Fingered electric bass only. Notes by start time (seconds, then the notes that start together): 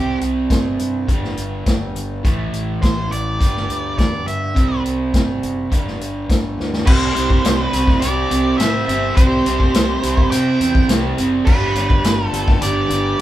Already playing: C2
0.21 C2
0.51 G1
0.79 G2
1.09 G1
1.37 G1
1.66 G1
1.95 G1
2.24 A1
2.53 A1
2.83 A1
3.10 A1
3.41 G1
3.68 D2
3.99 E2
4.26 G2
4.56 C2
4.84 C2
5.14 G1
5.43 F#1
5.72 G1
6.00 G1
6.30 G1
6.58 D2
6.87 C2
7.15 C2
7.44 C2
7.73 C2
8.02 C2
8.31 C2
8.59 A2
8.88 G1
9.17 C2
9.46 C2
9.74 C2
10.03 C2
10.32 C3
10.60 E2
10.89 C2
11.18 F#1
11.47 G1
11.75 G1
12.04 G1
12.32 G1
12.61 G1
12.90 G1